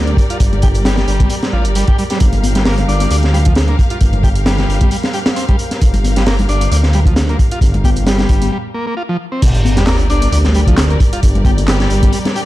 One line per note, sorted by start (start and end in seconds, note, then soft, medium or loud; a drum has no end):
0.00 0.14 D2 loud
0.00 8.48 G3 medium
0.00 8.48 G4 medium
0.00 8.48 A#4 medium
0.00 2.19 D5 medium
0.07 closed hi-hat soft
0.17 kick medium
0.17 closed hi-hat medium
0.30 0.38 F4 medium
0.30 closed hi-hat medium
0.40 1.05 G1 loud
0.40 kick loud
0.40 closed hi-hat loud
0.40 closed hi-hat medium
0.53 closed hi-hat soft
0.53 low conga medium
0.62 0.68 G4 loud
0.62 kick loud
0.62 closed hi-hat medium
0.74 closed hi-hat soft
0.74 closed hi-hat medium
0.85 0.96 G3 medium
0.85 snare loud
0.85 closed hi-hat soft
0.85 closed hi-hat medium
0.98 1.29 G3 medium
0.98 snare medium
0.98 closed hi-hat soft
0.98 low conga medium
1.08 1.26 G1 loud
1.08 closed hi-hat medium
1.20 kick loud
1.20 closed hi-hat medium
1.20 high conga medium
1.30 1.36 G3 medium
1.30 closed hi-hat medium
1.43 snare medium
1.43 closed hi-hat soft
1.53 1.67 A1 medium
1.53 1.65 F4 medium
1.65 1.83 G1 medium
1.65 closed hi-hat medium
1.75 1.85 G3 medium
1.75 closed hi-hat medium
1.75 closed hi-hat soft
1.87 1.97 G4 loud
1.87 kick loud
1.87 closed hi-hat soft
1.98 2.04 G3 medium
1.98 closed hi-hat medium
2.10 2.18 G3 loud
2.10 snare soft
2.10 closed hi-hat medium
2.20 2.85 G1 loud
2.20 8.51 F5 medium
2.20 kick loud
2.20 closed hi-hat medium
2.32 closed hi-hat soft
2.32 low conga medium
2.44 closed hi-hat medium
2.44 high conga medium
2.55 2.63 G3 medium
2.55 snare soft
2.55 closed hi-hat medium
2.55 high conga medium
2.65 2.75 A#3 loud
2.65 snare loud
2.65 closed hi-hat soft
2.65 open hi-hat medium
2.78 closed hi-hat soft
2.78 low conga medium
2.88 3.07 G1 loud
2.88 3.10 D4 loud
2.88 closed hi-hat medium
3.00 closed hi-hat medium
3.00 closed hi-hat soft
3.00 high conga medium
3.11 3.75 D2 loud
3.11 3.16 D4 medium
3.11 closed hi-hat medium
3.23 snare soft
3.23 closed hi-hat soft
3.33 3.39 G3 loud
3.33 closed hi-hat medium
3.45 3.53 F3 medium
3.45 kick medium
3.45 closed hi-hat medium
3.55 snare loud
3.55 closed hi-hat soft
3.55 closed hi-hat medium
3.68 3.76 A#3 medium
3.68 closed hi-hat soft
3.79 kick loud
3.79 closed hi-hat medium
3.90 3.98 F4 medium
3.90 closed hi-hat medium
4.01 4.65 G1 loud
4.01 kick loud
4.01 closed hi-hat medium
4.13 closed hi-hat soft
4.13 low conga medium
4.24 4.29 G4 loud
4.24 kick loud
4.24 closed hi-hat medium
4.35 closed hi-hat soft
4.35 closed hi-hat medium
4.46 4.57 G3 medium
4.46 snare loud
4.46 closed hi-hat medium
4.46 closed hi-hat soft
4.58 4.90 G3 medium
4.58 snare medium
4.58 closed hi-hat soft
4.58 low conga medium
4.69 4.87 G1 medium
4.69 closed hi-hat medium
4.81 kick loud
4.81 closed hi-hat medium
4.81 high conga medium
4.91 4.97 G3 medium
4.91 closed hi-hat soft
4.91 closed hi-hat medium
5.03 snare medium
5.03 closed hi-hat soft
5.13 5.19 G4 loud
5.13 closed hi-hat medium
5.26 snare loud
5.26 closed hi-hat medium
5.36 5.45 C4 loud
5.36 closed hi-hat soft
5.36 closed hi-hat medium
5.49 5.56 G3 medium
5.49 kick medium
5.49 closed hi-hat soft
5.59 closed hi-hat medium
5.71 snare soft
5.71 closed hi-hat medium
5.82 6.46 G1 loud
5.82 kick loud
5.82 closed hi-hat medium
5.94 closed hi-hat soft
5.94 low conga medium
6.04 closed hi-hat medium
6.04 high conga medium
6.16 6.24 G3 medium
6.16 snare medium
6.16 closed hi-hat medium
6.16 high conga medium
6.26 6.36 A#3 loud
6.26 snare loud
6.26 closed hi-hat soft
6.26 open hi-hat medium
6.39 closed hi-hat soft
6.39 low conga medium
6.49 6.67 G1 medium
6.49 6.71 D4 loud
6.49 closed hi-hat medium
6.61 closed hi-hat medium
6.61 closed hi-hat soft
6.61 high conga medium
6.71 7.36 D2 loud
6.71 6.77 D4 medium
6.71 closed hi-hat medium
6.83 snare soft
6.83 closed hi-hat soft
6.93 7.00 G3 loud
6.93 closed hi-hat medium
7.06 7.14 F3 medium
7.06 kick loud
7.06 closed hi-hat medium
7.16 snare loud
7.16 closed hi-hat medium
7.16 closed hi-hat soft
7.29 7.37 A#3 medium
7.29 closed hi-hat soft
7.39 kick loud
7.39 closed hi-hat medium
7.51 7.59 F4 medium
7.51 closed hi-hat medium
7.61 8.26 G1 loud
7.61 kick loud
7.61 closed hi-hat medium
7.74 closed hi-hat soft
7.74 low conga loud
7.84 7.90 G4 loud
7.84 kick medium
7.84 closed hi-hat medium
7.84 high conga medium
7.96 closed hi-hat soft
7.96 closed hi-hat medium
7.96 high conga medium
8.06 8.18 G3 medium
8.06 snare loud
8.06 closed hi-hat medium
8.18 8.51 G3 medium
8.18 snare medium
8.18 closed hi-hat soft
8.18 low conga medium
8.29 8.48 G1 loud
8.29 kick loud
8.29 closed hi-hat medium
8.42 closed hi-hat soft
8.42 closed hi-hat medium
8.42 high conga medium
8.52 8.58 G3 medium
8.74 8.86 A#3 medium
8.87 8.95 A#3 loud
8.97 9.03 F4 loud
9.09 9.17 F3 loud
9.32 9.42 C4 medium
9.42 10.07 G1 loud
9.42 12.45 G3 medium
9.42 12.45 G4 medium
9.42 12.45 A#4 medium
9.42 12.45 D5 medium
9.42 kick loud
9.42 closed hi-hat medium
9.42 crash medium
9.42 sub drop medium
9.54 closed hi-hat soft
9.65 closed hi-hat medium
9.65 high conga medium
9.77 9.85 G3 medium
9.77 snare medium
9.77 closed hi-hat medium
9.77 high conga medium
9.87 9.97 A#3 loud
9.87 snare loud
9.87 clap loud
9.87 closed hi-hat medium
9.87 open hi-hat medium
9.99 closed hi-hat soft
10.10 10.28 G1 loud
10.10 10.32 D4 loud
10.10 closed hi-hat medium
10.22 closed hi-hat medium
10.22 closed hi-hat soft
10.22 high conga medium
10.32 10.97 D2 loud
10.32 10.38 D4 medium
10.32 closed hi-hat medium
10.44 snare soft
10.44 closed hi-hat soft
10.44 low conga loud
10.54 10.61 G3 loud
10.54 closed hi-hat medium
10.67 10.75 F3 medium
10.67 kick medium
10.67 closed hi-hat medium
10.77 snare loud
10.77 clap loud
10.77 closed hi-hat medium
10.90 10.98 A#3 medium
10.90 closed hi-hat soft
11.00 kick loud
11.00 closed hi-hat medium
11.13 11.20 F4 medium
11.13 closed hi-hat medium
11.23 11.87 G1 loud
11.23 kick loud
11.23 closed hi-hat medium
11.23 closed hi-hat loud
11.35 closed hi-hat soft
11.35 low conga medium
11.45 11.51 G4 loud
11.45 kick loud
11.45 closed hi-hat medium
11.45 high conga medium
11.58 closed hi-hat soft
11.58 closed hi-hat medium
11.58 high conga medium
11.68 11.79 G3 medium
11.68 snare loud
11.68 clap loud
11.68 closed hi-hat medium
11.80 12.12 G3 medium
11.80 snare medium
11.80 closed hi-hat soft
11.90 12.09 G1 loud
11.90 closed hi-hat medium
12.03 kick loud
12.03 closed hi-hat medium
12.03 high conga medium
12.13 12.19 G3 medium
12.13 closed hi-hat medium
12.25 snare medium
12.25 closed hi-hat soft
12.25 low conga loud
12.36 12.41 G4 loud
12.36 closed hi-hat medium